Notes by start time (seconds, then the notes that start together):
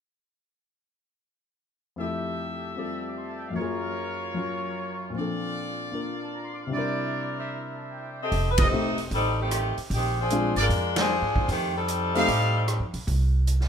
1.96 F2 F3 A3 G4 A4 E5
2.00 E4 G4
2.75 G3 C4 F4 G4 A4 D5
2.97 E6
3.07 D6
3.17 C6
3.27 A5
3.37 G5
3.46 F5
3.50 F#2 F#3
3.56 A#3 F4 A#4 C#5
3.61 G#4
4.34 F#3 C#4 F4
5.10 A#2 F3 F4
5.14 C4 D4 D5
5.21 A4
5.92 A#3 D4 F4 A#4
6.13 F5
6.23 A5
6.33 A#5
6.43 C6
6.54 D6
6.63 C3 F5
6.70 G3 D4 E4 A#4 C5 D5
6.76 E4 A#4
7.39 C5 D5 E5
7.73 A5
7.92 G5
8.12 E5
8.22 C4 G4 A4 D#5
8.32 F1, kick, open hi-hat
8.51 B4
8.58 F4 G4 A4 D#5, kick, ride
8.62 A3 D#4 G4 C5
8.71 E1 A3 C4 D#4 G4
8.98 open hi-hat
9.11 A1 G3 C4 D#4, kick, open hi-hat
9.15 A4
9.41 D#3 A3 C4 G4
9.51 cross-stick, closed hi-hat
9.78 muted upright bass stroke, open hi-hat
9.90 A#1 G4, kick, open hi-hat
9.95 D#3 G#3 C4
10.20 F3 C4 D4 G#4
10.30 G#3 C4 D4 F4, closed hi-hat
10.56 G#1 G#4 A#4 C5 D5, open hi-hat
10.60 G#3 D4 F4 A#4
10.69 F2, kick, open hi-hat
10.96 C4, snare, ride
11.00 F3 D4 G#4
11.22 G#2
11.36 E2, kick
11.48 F2 D#3 A3 C4 G4, kick, open hi-hat
11.76 G3 C4 D#4 A4
11.88 closed hi-hat
12.15 A3 C4 D#4 G4 A4 D#5 F5, open hi-hat
12.28 A2, kick, open hi-hat
12.68 cross-stick, closed hi-hat
12.80 F2
12.94 B1, open hi-hat
13.07 C2, kick, open hi-hat
13.47 closed hi-hat
13.60 snare